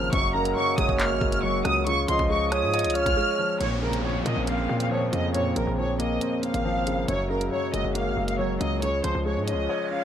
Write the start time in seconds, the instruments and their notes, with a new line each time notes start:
Already playing: 808-style bass G#1, grand piano A#2 C#3 F3 A#3 C4
0.13 808-style bass F#1, grand piano F#2, french horn section G#3 A#3 F#4, violin section C#6, kick, closed hi-hat
0.34 grand piano C#3, soft synth lead A#4, violin section A#5
0.45 closed hi-hat
0.56 grand piano F#3, violin section C#6
0.78 808-style bass F#1, grand piano G#3, soft synth lead C#5, violin section D#6, kick, closed hi-hat
0.89 808-style bass F#1, kick
0.99 grand piano A#3, violin section F6, clap, closed hi-hat
1.11 808-style bass G#1
1.21 808-style bass F#1, grand piano G#3, kick
1.32 violin section F6, closed hi-hat
1.43 grand piano F#3, violin section C#6
1.65 808-style bass C#2, grand piano C#3, violin section D#6, cross-stick, closed hi-hat
1.87 french horn section C#3 G#3 F4, grand piano C#3, violin section C#6, closed hi-hat
2.08 808-style bass C#2, grand piano F3, soft synth lead D#5, violin section C6, closed hi-hat
2.19 808-style bass C#2, kick
2.30 grand piano G#3, violin section C#6
2.51 grand piano C#4, soft synth lead C#5, violin section D#6, cross-stick, closed hi-hat
2.63 808-style bass G#2
2.74 grand piano C#5, soft synth lead D#5, closed hi-hat
2.79 closed hi-hat
2.84 808-style bass C#2, closed hi-hat
2.90 closed hi-hat
2.95 grand piano C#4, soft synth lead C#5, violin section F6, closed hi-hat
3.06 808-style bass C#2, kick, closed hi-hat
3.17 grand piano G#3
3.39 grand piano F3
3.61 808-style bass A#1, grand piano A#2, french horn section C#3 A#3 C4, violin section C#5, closed hi-hat, downlifter
3.82 grand piano C#3, violin section A#4
3.93 closed hi-hat
4.04 grand piano F3, violin section C#5
4.26 808-style bass A#2, grand piano A#3, violin section D#5, closed hi-hat
4.37 808-style bass A#1
4.47 grand piano C4, violin section F5, closed hi-hat
4.69 808-style bass A#2, grand piano A#3
4.80 violin section F5, closed hi-hat
4.91 grand piano F3, violin section C#5
5.12 808-style bass F2, grand piano C#3, violin section D#5, closed hi-hat
5.34 grand piano A#2, violin section C#5, closed hi-hat
5.56 808-style bass A#1, grand piano C#3, violin section A#4, closed hi-hat
5.67 808-style bass A#1
5.78 grand piano F3, violin section C#5
5.99 grand piano A#3, violin section D#5, closed hi-hat
6.21 grand piano C4, closed hi-hat
6.43 grand piano A#3, violin section F5, closed hi-hat
6.54 808-style bass G#1, closed hi-hat
6.65 grand piano F3
6.87 grand piano C#3, closed hi-hat
7.08 808-style bass F#1, grand piano F#2, french horn section G#3 F#4, violin section C#5, closed hi-hat
7.30 grand piano C#3, violin section A#4
7.41 closed hi-hat
7.52 grand piano F#3, violin section C#5
7.74 808-style bass F#1, grand piano G#3, violin section D#5, closed hi-hat
7.84 808-style bass F#1
7.95 grand piano A#3, violin section F5, closed hi-hat
8.06 808-style bass G#1
8.17 808-style bass F#1, grand piano G#3
8.28 violin section F5, closed hi-hat
8.39 grand piano F#3, violin section C#5
8.61 808-style bass C#2, grand piano C#3, violin section D#5, closed hi-hat
8.82 grand piano C#3, french horn section C#3 F4, violin section C#5, closed hi-hat, riser
9.04 808-style bass C#2, grand piano F3, violin section C5, closed hi-hat
9.15 808-style bass C#2
9.26 grand piano G#3, violin section C#5
9.37 808-style bass G#2
9.47 grand piano C#4, violin section D#5, closed hi-hat
9.53 808-style bass C#2
9.69 grand piano C#5
9.91 grand piano C#4, violin section F5